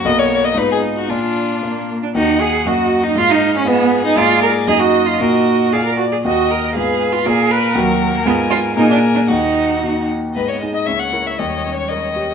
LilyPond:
<<
  \new Staff \with { instrumentName = "Violin" } { \time 2/4 \key ees \minor \tempo 4 = 117 dis''16 des''8 dis''16 ces''16 aes'8 ges'16 | f'4. r8 | ges''4 ees''4 | f''4 aes'4~ |
aes'4 ees''4 | bes'4 f''8 d''8 | ees''4 ces''4 | bes'2~ |
bes'4 bes'4 | ges'4. r8 | \key gis \minor b'16 cis''8 dis''16 e''16 fis''8 e''16 | dis''8. cis''16 dis''4 | }
  \new Staff \with { instrumentName = "Violin" } { \time 2/4 \key ees \minor ais4 ees'4 | d'4. r8 | ees'8 aes'8 ges'8. ees'16 | f'16 ees'8 des'16 ces'8. ees'16 |
d''4 ees''4~ | ees''4 d''8 r8 | ees''4 f''4 | f''4 ges''4 |
aes''4 aes''4 | ges''4. r8 | \key gis \minor dis''4 cis''4~ | cis''2 | }
  \new Staff \with { instrumentName = "Cello" } { \time 2/4 \key ees \minor b4 ees'4 | d'4 bes8. d'16 | ees'8 aes'8 ges'8. ees'16 | f'16 ees'8 des'16 ces'8. ees'16 |
f'8 bes'8 aes'16 ges'8 f'16 | ges'4 aes'16 bes'16 ges'16 aes'16 | ges'8 bes'8 aes'8. f'16 | aes'8 ces''8 ges8. bes16 |
ces'8 f'8 ees'16 d'8 d'16 | ees'4. r8 | \key gis \minor b4 ais4 | g2 | }
  \new Staff \with { instrumentName = "Grand piano" } { \time 2/4 \key ees \minor <b,, ais fis' dis''>4 <aes, ces' f' ees''>4 | bes,4 <bes f' d''>4 | <ees, bes ges' ees''>4 <ges, bes ges' ees''>4 | aes,4 <ces' f' ees''>4 |
<aes, bes f' d''>4 <ges, bes ees' ees''>4 | <bes, bes ees' ees''>4 <bes, bes f' d''>4 | <ees, bes ges' ees''>4 <aes, ces' f' f''>4 | <bes, bes f' d''>4 <ees, bes ges' bes'>4 |
<aes, ces' f' aes'>4 <bes, bes f' aes'>4 | ees,4 <bes ees' ges'>4 | \key gis \minor gis,8 <dis' gis'>8 cis,8 <e' ais'>8 | dis,8 cis'8 ais'8 g'8 | }
>>